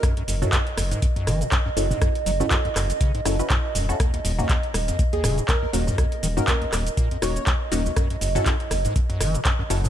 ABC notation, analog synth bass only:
X:1
M:4/4
L:1/8
Q:"Swing 16ths" 1/4=121
K:Gb
V:1 name="Analog synth bass" clef=bass
z G,,, z G,,, z G,,, z G,,, | z G,,, z G,,, z G,,, z _F,,, | z E,,, z E,,, z E,,, z E,,, | z E,,, z E,,, z E,,, z E,,, |
z G,,, z G,,, z G,,, z G,,, |]